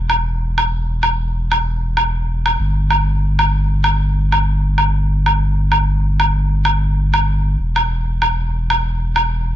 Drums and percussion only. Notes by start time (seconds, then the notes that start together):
0.10 low woodblock
0.58 low woodblock
1.03 low woodblock
1.52 low woodblock
1.97 low woodblock
2.46 low woodblock
2.90 low woodblock
3.39 low woodblock
3.84 low woodblock
4.32 low woodblock
4.78 low woodblock
5.26 low woodblock
5.72 low woodblock
6.20 low woodblock
6.65 low woodblock
7.14 low woodblock
7.76 low woodblock
8.22 low woodblock
8.70 low woodblock
9.16 low woodblock